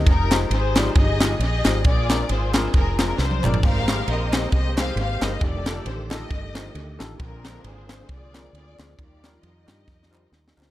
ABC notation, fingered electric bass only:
X:1
M:4/4
L:1/8
Q:"Swing" 1/4=134
K:Bbmix
V:1 name="Fingered electric bass" clef=bass
F,,,2 A,,,2 G,,,2 B,,, A,,, | B,,,2 A,,,2 F,,,2 C,, G,,, | A,,,2 B,,,2 C,,2 A,,, G,,, | F,,,2 =A,,,2 G,,,2 D,, A,,, |
B,,,2 A,,,2 C,,2 D,, D,, | E,,2 F,, G,, F,,2 E,, D,, |]